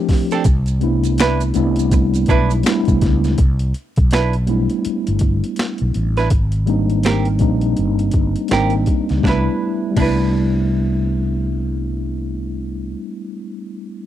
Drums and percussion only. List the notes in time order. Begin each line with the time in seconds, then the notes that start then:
0.09 kick, snare, open hi-hat
0.31 snare, closed hi-hat, maracas
0.44 kick, closed hi-hat, maracas
0.66 closed hi-hat, maracas
0.81 closed hi-hat
1.04 closed hi-hat, maracas
1.18 finger snap, snare, closed hi-hat, maracas
1.40 closed hi-hat, maracas
1.54 closed hi-hat, maracas
1.76 closed hi-hat, maracas
1.91 kick, closed hi-hat, maracas
2.14 closed hi-hat, maracas
2.26 kick, closed hi-hat, maracas
2.50 closed hi-hat, maracas
2.63 finger snap, snare, closed hi-hat, maracas
2.85 kick, closed hi-hat, maracas
3.01 kick, snare, closed hi-hat
3.24 snare, closed hi-hat, maracas
3.38 kick, closed hi-hat
3.59 closed hi-hat
3.74 closed hi-hat
3.96 kick, closed hi-hat
4.11 finger snap, snare, closed hi-hat
4.33 closed hi-hat
4.47 closed hi-hat
4.70 closed hi-hat
4.85 closed hi-hat
5.07 closed hi-hat
5.19 kick, closed hi-hat
5.44 closed hi-hat
5.56 finger snap, snare, closed hi-hat
5.78 closed hi-hat
5.94 closed hi-hat
6.17 snare, closed hi-hat
6.30 kick, closed hi-hat
6.52 closed hi-hat
6.67 closed hi-hat
6.90 closed hi-hat
7.03 finger snap, snare, closed hi-hat
7.25 closed hi-hat
7.39 kick, closed hi-hat
7.61 closed hi-hat
7.77 closed hi-hat
7.99 closed hi-hat
8.11 kick, closed hi-hat
8.36 closed hi-hat
8.48 finger snap, snare, closed hi-hat
8.70 closed hi-hat
8.86 kick, closed hi-hat
9.09 snare, closed hi-hat
9.23 kick, snare
9.96 kick, crash